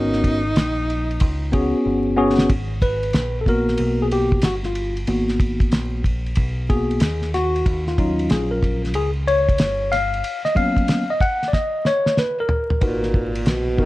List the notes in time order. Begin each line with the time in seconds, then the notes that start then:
Already playing: G#1 B3 C#4 D#4 F#4 A#4
0.13 snare
0.24 kick, ride
0.56 A#1, snare, hi-hat pedal, ride
0.90 ride
1.11 ride
1.20 C#2, kick, ride
1.52 B3 C#4 F#4 G#4, kick, ride
1.74 muted picked electric bass stroke
1.86 G1
2.16 B3 C#4 F#4 G#4
2.38 snare
2.49 G#1, kick, ride
2.82 B4, kick, ride
3.03 ride
3.13 A#1, snare, hi-hat pedal, ride
3.41 A4
3.46 A#3 B3 F#4 A#4, kick, ride
3.68 snare
3.78 B1, ride
4.02 G#4
4.11 G4, ride
4.32 kick
4.42 G1 F#4, snare, hi-hat pedal, ride
4.63 F4, snare
4.75 ride
4.97 ride
5.07 G#1 A#3 B3 F#4, ride
5.29 snare
5.40 kick, ride
5.60 kick, ride
5.72 A#1, snare, hi-hat pedal, ride
6.04 kick, ride
6.26 ride
6.35 B1, kick, ride
6.69 A#3 B3 F#4 G#4, kick, ride
6.91 ride
7.00 D#2, snare, hi-hat pedal, ride
7.22 snare
7.34 F#4, snare, ride
7.56 ride
7.66 D#2, kick, ride
7.87 F4, snare
7.98 F#3 C#4 D#4 F4, kick, ride
8.19 ride
8.30 A#1 G#4, snare, hi-hat pedal, ride
8.51 A#4
8.63 kick, ride
8.85 snare, ride
8.94 C#2 G#4, ride
9.28 C#5, ride
9.49 kick, ride
9.58 G1, snare, hi-hat pedal, ride
9.92 F5, snare, ride
10.14 ride
10.24 ride
10.45 D#5, snare
10.55 F#3 A#3 B3 C#4 F5, kick, ride
10.77 kick, ride
10.88 snare, hi-hat pedal, ride
11.10 D#5
11.20 F#5, kick, ride
11.43 snare, ride
11.48 D5
11.53 D#5, kick, snare
11.85 C#5, snare
12.06 snare
12.17 B4, snare
12.40 A#4
12.49 floor tom
12.70 floor tom
12.81 G#1 D#4 F#4 A#4 B4, kick, ride
12.86 A#2
13.03 snare
13.14 kick
13.35 ride
13.46 A#1 B2, snare, hi-hat pedal, ride
13.78 B3 D#4 F#4 A#4, kick
13.82 D#3